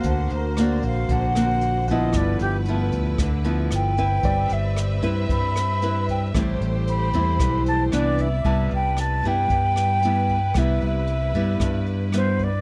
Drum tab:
HH |xxxxxxxx|xxxxxxxx|xxxxxxxx|xxxxxxxx|
SD |--r--r--|r---r-r-|--r--r--|r---r-r-|
BD |o--oo--o|o--oo--o|o--oo--o|o--oo--o|

HH |xxxxxxxx|xxxxxxxx|
SD |--r--r--|r---r-r-|
BD |o--oo--o|o--oo--o|